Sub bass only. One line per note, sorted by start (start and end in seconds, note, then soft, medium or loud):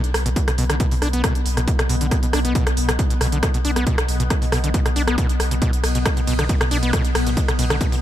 0.14 0.25 B1 loud
0.26 0.36 B1 medium
0.58 0.69 B1 loud
0.70 0.80 B1 medium
1.02 1.13 B1 loud
1.13 1.24 B1 medium
1.46 1.57 B1 loud
1.57 1.67 B1 medium
1.89 2.00 B1 medium
2.01 2.11 B1 medium
2.33 2.44 B1 loud
2.45 2.55 B1 medium
2.77 2.88 B1 loud
2.89 2.99 B1 medium
3.21 3.32 B1 loud
3.32 3.43 B1 medium
3.65 3.76 B1 loud
3.76 3.86 B1 medium
4.08 4.19 B1 loud
4.20 4.30 B1 medium
4.52 4.63 B1 loud
4.64 4.74 B1 medium
4.96 5.07 B1 loud
5.08 5.18 B1 medium
5.40 5.51 B1 loud
5.51 5.62 B1 medium
5.84 5.95 B1 loud
5.95 6.05 B1 medium
6.27 6.38 B1 loud
6.39 6.49 B1 medium
6.71 6.82 B1 loud
6.83 6.93 B1 medium
7.15 7.26 B1 loud
7.27 7.37 B1 medium
7.59 7.70 B1 loud
7.70 7.81 B1 medium